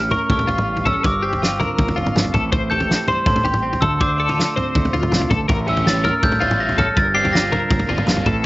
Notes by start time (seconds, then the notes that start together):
Already playing: A1 A2 C#4 G4 F6
0.11 A#4 C#6, floor tom, mid tom
0.29 A2 G3 C#6, kick, floor tom
0.39 floor tom
0.47 A1 E2 F4, floor tom
0.58 mid tom
0.77 floor tom
0.85 C#4 A4 E6, kick, floor tom, mid tom
1.03 G1 G2 A#4 D6, kick, floor tom
1.23 C4 G4
1.33 floor tom
1.42 F4, snare
1.60 D3 A#4, floor tom, mid tom
1.78 G1 A#3, kick, floor tom
1.88 floor tom
1.96 G1 D3 F4, floor tom
2.06 mid tom
2.15 G1, snare, mid tom
2.24 floor tom
2.33 A1 A2 A4, kick, floor tom, mid tom
2.52 C4 C5, kick, floor tom
2.70 G4 A4 G6, floor tom
2.80 floor tom
2.88 E3, snare
3.08 G3 C5 C6, floor tom, mid tom
3.26 E2 A2 C6, kick, floor tom
3.36 floor tom
3.44 A1 G4, floor tom
3.54 mid tom
3.63 C4
3.73 floor tom
3.81 D2 A4 E6, kick, floor tom, mid tom
4.00 D4 C5 D6, kick, floor tom
4.18 D4 A4
4.28 F4, floor tom
4.37 D3, snare
4.56 C4 C5, floor tom, mid tom
4.75 D2 A2, kick, floor tom
4.85 floor tom
4.93 D2 F4, floor tom
5.03 mid tom
5.12 C2 D4, snare, mid tom
5.21 floor tom
5.29 A1 D2 A4, kick, floor tom, mid tom
5.48 A1 A2 A#4, kick, floor tom
5.67 E3 G3 C#4 E4 G4 E6, floor tom
5.77 floor tom
5.86 E3 G3 C#4 E4 A6, snare
6.04 A#4 F6, floor tom, mid tom
6.23 A2 G3 G6, kick, floor tom
6.32 floor tom
6.40 A1 E2 E3 G3 C#4 E4 F4 A6, floor tom
6.51 mid tom
6.60 E3 G3 C#4 E4 A#6
6.69 floor tom
6.78 C#4 A4 F6, kick, floor tom, mid tom
6.96 G1 G2 A#4 A6, kick, floor tom
7.14 D3 G3 A#3 C4 D4 G4 C7
7.25 floor tom
7.33 D3 G3 A#3 D4 F4 A#6, snare
7.51 D3 A#4, floor tom, mid tom
7.70 G1 A#3, kick, floor tom
7.79 floor tom
7.88 G1 F2 D3 G3 A#3 D4 F4, floor tom
7.98 mid tom
8.07 G1 G2 D3 G3 A#3 D4, snare, mid tom
8.17 floor tom
8.25 A1 A2 A4, kick, floor tom, mid tom